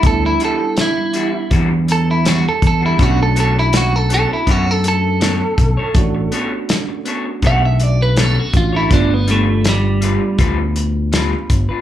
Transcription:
<<
  \new Staff \with { instrumentName = "Clean electric guitar" } { \time 4/4 \key b \minor \tempo 4 = 81 a'16 e'16 a'8 e'4 r8 a'16 e'16 fis'16 a'16 a'16 e'16 | fis'16 a'16 a'16 e'16 fis'16 a'16 a'16 e'16 fis'16 a'16 a'4.~ | a'4. r8 fis''16 e''16 d''16 b'16 a'16 fis'16 eis'16 e'16 | d'16 b16 a8 g4 r2 | }
  \new Staff \with { instrumentName = "Clean electric guitar" } { \time 4/4 \key b \minor r8 <e g d' fis'>16 r8. <e g d' fis'>16 r16 <e g d' fis'>16 r8. <e g d' fis'>16 r8 <g d' fis'>16 | <b d' a' cis''>16 r16 <b d' a' cis''>16 r8. <b d' a' cis''>16 r16 <b d' a' cis''>16 r8. <b d' a' cis''>16 r8 <d' a' cis''>16 | r8 <b d' a' cis''>16 r8. <b d' a' cis''>16 r16 <b d' a' cis''>16 r8. <b d' a' cis''>16 r8 <d' a' cis''>16 | <g d' f' b'>16 r16 <g d' f' b'>16 r8. <g d' f' b'>16 r16 <g d' f' b'>16 r8. <g d' f' b'>16 r8 <d' f' b'>16 | }
  \new Staff \with { instrumentName = "Tine electric piano" } { \time 4/4 \key b \minor <g b d' e'>1 | <a cis' d' fis'>1 | <a cis' d' fis'>2.~ <a cis' d' fis'>8 <a cis' d' fis'>8 | <a b d' f'>1 | }
  \new Staff \with { instrumentName = "Fingered electric bass" } { \clef bass \time 4/4 \key b \minor d,8 r4. e,4. e,8 | b,,2 fis,4. b,,16 r16 | a,,8 r4. b,,4. a,,8 | g,,2 d,4. g,,16 r16 | }
  \new DrumStaff \with { instrumentName = "Drums" } \drummode { \time 4/4 <hh bd>8 hh8 <hh sn>8 hh8 <hh bd>8 hh8 <hh sn>8 <hh bd>8 | <hh bd>8 hh8 <hh sn>8 hh8 <hh bd>8 hh8 <hh sn>8 <hh bd>8 | <hh bd>8 hh8 <hh sn>8 hh8 <hh bd>8 hh8 <hh sn>8 <hh bd>8 | <hh bd>8 hh8 <hh sn>8 hh8 <hh bd>8 hh8 <hh sn>8 <hh bd>8 | }
>>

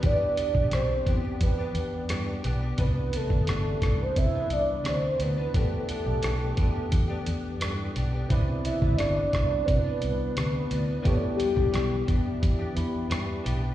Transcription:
<<
  \new Staff \with { instrumentName = "Soft synth lead" } { \time 4/4 \key e \phrygian \tempo 4 = 87 d''4 c''4 b'4. r8 | b'8 a'4~ a'16 c''16 e''8 d''8 c''8 b'8 | a'2.~ a'8 r8 | r8 e''8 d''4 b'2 |
a'8 g'4 r2 r8 | }
  \new Staff \with { instrumentName = "Synth keys" } { \time 4/4 \key e \phrygian r1 | r1 | r1 | <c' e' b' d''>1 |
<b e' g' des'' d''>2~ <b e' g' des'' d''>8 <b e' g' b'>4. | }
  \new Staff \with { instrumentName = "Clean electric guitar" } { \time 4/4 \key e \phrygian <e b d' g'>8 <e b d' g'>16 <b d' g'>16 <e d' g'>8 <e b d' g'>16 <b d' g'>8 <b d' g'>8. <e b d' g'>16 <b d' g'>16 <e b d' g'>16 <b d' g'>16 | <c e b d'>8 <c e b d'>16 <e b d'>16 <c e b d'>8 <c e b d'>8. <e b d'>8. <c e b d'>16 <e b d'>16 <c e b d'>16 <e b d'>16 | <e b d' g'>8 <e b d' g'>16 <b d' g'>16 <e b d' g'>8 <e b d' g'>16 <b d' g'>8 <b d' g'>8. <e b d' g'>8 <e b d' g'>16 <b d' g'>16 | <c e b d'>8 <c e b d'>16 <e b d'>16 <c e b d'>8 <c e b d'>8. <e b d'>8. <c e b d'>8 <c e b d'>16 <e b d'>16 |
<e b d' g'>8 <e b d' g'>16 <b d' g'>16 <e b d' g'>8 <e b d' g'>8. <b d' g'>8. <e b d' g'>16 <b d' g'>16 <e b d' g'>16 <b d' g'>16 | }
  \new Staff \with { instrumentName = "Fingered electric bass" } { \clef bass \time 4/4 \key e \phrygian e,8. b,,16 b,,8 e,8 e8 e,8 g,8 b,,8 | c,8. d,16 g,,8 c,8 c8 c,8 d,8 d,8 | e,8. b,,16 b,,8 e,8 e8 e,8 g,8 b,,8 | c,8. d,16 g,,8 c,8 c8 c,8 d,8 d,8 |
e,8. b,,16 b,,8 e,8 e8 e,8 g,8 b,,8 | }
  \new DrumStaff \with { instrumentName = "Drums" } \drummode { \time 4/4 <hh bd>8 hh16 bd16 <hh ss>8 <hh bd>8 <hh bd>8 hh8 <hh ss>8 hh8 | <hh bd>8 hh16 bd16 <hh ss>8 <hh bd ss>8 <hh bd>8 hh8 <hh ss>8 hh8 | <hh bd>8 hh8 <hh ss>8 <hh bd>8 <hh bd>8 hh8 <hh ss>8 hh8 | <hh bd>8 hh16 bd16 <hh ss>8 <hh bd ss>8 <hh bd>8 hh8 <hh ss>8 hh8 |
<hh bd>8 hh16 bd16 <hh ss>8 <hh bd>8 <hh bd>8 hh8 <hh ss>8 hh8 | }
>>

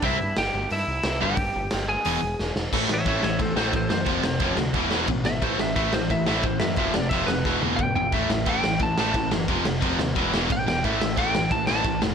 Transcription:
<<
  \new Staff \with { instrumentName = "Lead electric guitar" } { \time 4/4 \key e \mixolydian \tempo 4 = 178 <e' e''>4 <g' g''>4 <e' e''>4. <g' g''>8~ | <g' g''>4. <gis' gis''>2 r8 | r8 <cis'' e''>8 <cis'' e''>8 <cis'' e''>8 <a' c''>8 <a' c''>8 <a' c''>8 c''8~ | c''4. r2 e''8 |
c''8 e''8 e''8 c''8 e''8 e''8 c''8 e''8 | e''8 d''8 e''8 b'4 r8 g''8 g''8 | e''4 g''4 a''8 a''4 r8 | r2. g''8 g''8 |
e''4 g''4 a''8 a''4 r8 | }
  \new Staff \with { instrumentName = "Distorted electric guitar" } { \clef bass \time 4/4 \key e \mixolydian <c g c'>8 r2. <g, d g>8 | r2 <e, b, e>8 r4. | <a, e a>8 <a, e>8 <a, e a>8 <a, e>8 <a, e>8 <a, e a>8 <a, e>8 <a, e>8 | <f, c f>8 <f, c>8 <f, c f>8 <f, c>8 <e, b, e>8 <e, b, e>8 <e, b,>8 <e, b,>8 |
<a, e a>8 <a, e>8 <a, e a>8 <a, e>8 <a, e>8 <a, e a>8 <a, e>8 <a, e>8 | <f, c f>8 <f, c>8 <f, c f>8 <f, c>8 <e, b, e>8 <e, b, e>8 <e, b,>8 <e, b,>8 | <a, e a>8 <a, e>8 <a, e a>8 <a, e>8 <a, e>8 <a, e a>8 <a, e>8 <a, e>8 | <f, c f>8 <f, c>8 <f, c f>8 <f, c>8 <e, b, e>8 <e, b, e>8 <e, b,>8 <e, b,>8 |
<a, e a>8 <a, e>8 <a, e a>8 <a, e>8 <a, e>8 <a, e a>8 <a, e>8 <a, e>8 | }
  \new Staff \with { instrumentName = "Overdriven electric guitar" } { \clef bass \time 4/4 \key e \mixolydian <c g c'>8 r2. <g, d g>8 | r2 <e, b, e>8 r4. | <a, e a>8 <a, e>8 <a, e a>8 <a, e>8 <a, e>8 <a, e a>8 <a, e>8 <a, e>8 | <f, c f>8 <f, c>8 <f, c f>8 <f, c>8 <e, b, e>8 <e, b, e>8 <e, b,>8 <e, b,>8 |
<a, e a>8 <a, e>8 <a, e a>8 <a, e>8 <a, e>8 <a, e a>8 <a, e>8 <a, e>8 | <f, c f>8 <f, c>8 <f, c f>8 <f, c>8 <e, b, e>8 <e, b, e>8 <e, b,>8 <e, b,>8 | <a, e a>8 <a, e>8 <a, e a>8 <a, e>8 <a, e>8 <a, e a>8 <a, e>8 <a, e>8 | <f, c f>8 <f, c>8 <f, c f>8 <f, c>8 <e, b, e>8 <e, b, e>8 <e, b,>8 <e, b,>8 |
<a, e a>8 <a, e>8 <a, e a>8 <a, e>8 <a, e>8 <a, e a>8 <a, e>8 <a, e>8 | }
  \new Staff \with { instrumentName = "Picked electric bass" } { \clef bass \time 4/4 \key e \mixolydian c,8 g,8 g,,8 g,,8 g,8 c,8 c,8 g,,8 | g,,8 g,,8 g,,4 e,,8 e,,8 e,,8 e,,8 | a,,8 a,,8 a,,8 a,,8 a,,8 a,,8 a,,8 fis,8 | f,,8 f,,8 f,,8 d,8 e,,8 e,,8 a,,8 gis,,8 |
a,,8 a,,8 a,,8 a,,8 a,,8 a,,8 a,,8 fis,8 | f,,8 f,,8 f,,8 f,,8 e,,8 e,,8 a,,8 e,,8 | a,,8 a,,8 a,,8 a,,8 a,,8 a,,8 a,,8 fis,,8 | f,,8 f,,8 f,,8 dis,8 e,,8 e,,8 a,,8 e,,8 |
a,,8 a,,8 a,,8 a,,8 a,,8 a,,8 a,,8 e,,8 | }
  \new DrumStaff \with { instrumentName = "Drums" } \drummode { \time 4/4 <hho bd>4 <hho sn>4 hho4 <hho sn>4 | <hho bd>4 <hho sn>4 hho4 sn8 sn8 | <cymc bd>8 sn8 <cymc bd>8 sn8 <cymc bd>8 sn8 <cymc bd>8 sn8 | <cymc bd>8 sn8 <cymc bd>8 sn8 <cymc bd>8 sn8 <cymc bd>8 sn8 |
<cymc bd>8 sn8 <cymc bd>8 sn8 <cymc bd>8 sn8 <cymc bd>8 sn8 | <cymc bd>8 sn8 <cymc bd>8 sn8 <bd sn>8 tommh8 <bd toml>8 tomfh8 | <cymc bd>8 sn8 <cymc bd>8 sn8 <cymc bd>8 sn8 <cymc bd>8 sn8 | <cymc bd>8 sn8 <cymc bd>8 sn8 <cymc bd>8 sn8 <cymc bd>8 sn8 |
<cymc bd>8 sn8 <cymc bd>8 sn8 <cymc bd>8 sn8 <cymc bd>8 sn8 | }
>>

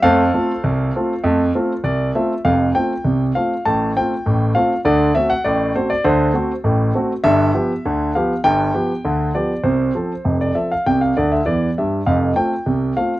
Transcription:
<<
  \new Staff \with { instrumentName = "Grand piano" } { \time 2/4 \key f \major \tempo 4 = 100 <a' c'' f''>2~ | <a' c'' f''>4 d''8 e''8 | f''8 g''4 f''8 | a''8 g''4 f''8 |
d''8 e''16 fis''16 d''8 c''16 d''16 | c''4 r4 | e''4. f''8 | g''4. d''8 |
c''4~ c''16 d''16 e''16 f''16 | g''16 f''16 d''16 e''16 d''8 e''8 | f''8 g''4 f''8 | }
  \new Staff \with { instrumentName = "Grand piano" } { \time 2/4 \key f \major <f, a>8 <a c' f'>8 c,8 <a c' f'>8 | <f, a>8 <a c' f'>8 c,8 <a c' f'>8 | <f,, f,>8 <a c' f'>8 <c, c>8 <a c' f'>8 | <a,, a,>8 <a c' f'>8 <a,, a,>8 <a c' f'>8 |
<d, d>8 <a c' fis'>8 <a,, a,>8 <a c' fis'>8 | <d, d>8 <a c' fis'>8 <a,, a,>8 <a c' fis'>8 | <g,, g,>8 <f b g'>8 <d, d>8 <f b g'>8 | <g,, g,>8 <f b g'>8 <d, d>8 <f b g'>8 |
<c, c>8 <f c' a'>8 <f,, f,>8 <f c' a'>8 | <c, c>8 <d, d>8 <e, e>8 <g, g>8 | <f,, f,>8 <a c' f'>8 <c, c>8 <a c' f'>8 | }
>>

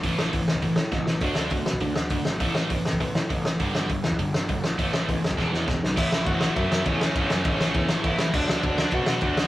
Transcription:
<<
  \new Staff \with { instrumentName = "Overdriven electric guitar" } { \time 4/4 \key a \major \tempo 4 = 202 r1 | r1 | r1 | r1 |
r1 | <e' e''>4 <fis' fis''>4 <e' e''>4 <cis' cis''>8 <cis' cis''>8~ | <cis' cis''>2~ <cis' cis''>8 r8 <e' e''>4 | <d' d''>4 <d' d''>4 <fis' fis''>4 <fis' fis''>4 | }
  \new Staff \with { instrumentName = "Distorted electric guitar" } { \clef bass \time 4/4 \key a \major <a, e a>4 <a, e>8 r8 <a, e>8 r8 <a, e>8 r8 | <d a d'>4 <d a>8 r8 <d a>8 r8 <d a>8 r8 | <a, e a>4 <a, e>8 r8 <a, e>8 r8 <a, e>8 r8 | <g, d g>4 <g, d>8 r8 <g, d>8 r8 <g, d>8 r8 |
<a, e a>4 <a, e>8 r8 <e, b, e>4 <e, b,>8 r8 | <a, e a>4. <a, e a>4. <a, e a>4 | <a, e a>4. <a, e a>4. <a, e a>4 | <d a d'>4. <d a d'>4. <d a d'>4 | }
  \new Staff \with { instrumentName = "Picked electric bass" } { \clef bass \time 4/4 \key a \major a,,8 a,,8 a,,8 a,,8 a,,8 a,8 a,,8 a,,8 | d,8 d,8 d,8 b,8 d,8 d,8 d,8 gis,,8 | a,,8 a,,8 a,,8 a,,8 a,,8 a,8 a,,8 a,,8 | g,,8 g,,8 g,,8 e,8 g,,8 g,,8 g,,8 a,,8 |
a,,8 a,,8 a,,8 fis,,8 e,,8 e,8 e,,8 b,,8 | a,,8 a,,8 a,,4 fis,8 fis,8 a,,4 | a,,8 fis,8 a,,8 a,,8 e,8 a,,8 a,,8 a,,8 | d,8 d,8 d,4 b,8 b,8 d,4 | }
  \new DrumStaff \with { instrumentName = "Drums" } \drummode { \time 4/4 <hho bd>8 sn8 <hho bd>8 sn16 bd16 <hho bd>8 sn8 <bd sn>8 sn8 | <hho bd>8 sn8 <hho bd>8 sn16 bd16 <hho bd>8 sn8 <hho bd>8 sn8 | <hho bd>8 sn8 <hho bd>8 sn16 bd16 <hho bd>8 sn8 <hho bd>8 sn8 | <hho bd>8 sn8 <hho bd>8 sn16 bd16 <hho bd>8 sn8 <hho bd>8 sn8 |
<hho bd>8 sn8 <hho bd>8 sn16 bd16 <bd sn>8 sn8 <bd sn>8 sn8 | <cymc bd>8 sn8 <bd cymr>8 sn8 <bd cymr>8 sn8 <bd cymr>8 sn8 | <bd cymr>8 sn8 <bd cymr>8 sn8 <bd cymr>8 sn8 <bd cymr>8 sn8 | <cymc bd>8 sn8 <bd cymr>8 sn8 <bd cymr>8 sn8 <bd cymr>8 sn8 | }
>>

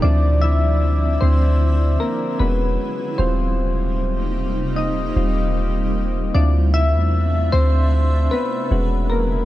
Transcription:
<<
  \new Staff \with { instrumentName = "Synth keys" } { \time 4/4 \key ees \lydian \tempo 4 = 76 << { <d' d''>8 <e' e''>4 <c' c''>4 <bes bes'>8 <b b'>4 | <c' c''>2 <ees' ees''>4. r8 | <d' d''>8 <e' e''>4 <c' c''>4 <b b'>4 <bes bes'>8 | } \\ { <f c' e'>8 r2 r8 <gis cis' fis'>8 r8 | <g c' f'>4. r4 <g c' f'>8 r4 | <c' e' f'>2. <gis cis' fis'>4 | } >> }
  \new Staff \with { instrumentName = "Ambient pad" } { \clef bass \time 4/4 \key ees \lydian <d f c' e'>2. <cis fis gis b e'>4 | <c g bes ees'>1 | <c a d' e''>2. <b, cis fis gis e'>4 | }
  \new Staff \with { instrumentName = "808-style bass" } { \clef bass \time 4/4 \key ees \lydian d,4. d,4 r8 e,,8 r8 | ees,,2~ ees,,8 ees,,4. | d,8. e,8. d,4 r8 e,,4 | }
>>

